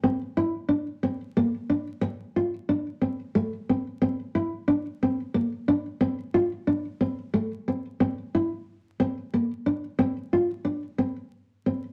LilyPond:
\new Staff \with { instrumentName = "Nylon-string guitar" } { \time 12/8 \key f \major \tempo 4. = 121 c'4 e'4 d'4 c'4 bes4 d'4 | r4 f'4 d'4 c'4 a4 c'4 | c'4 e'4 d'4 c'4 bes4 d'4 | c'4 f'4 d'4 c'4 a4 c'4 |
c'4 e'4 r4 c'4 bes4 d'4 | c'4 f'4 d'4 c'4 r4 c'4 | }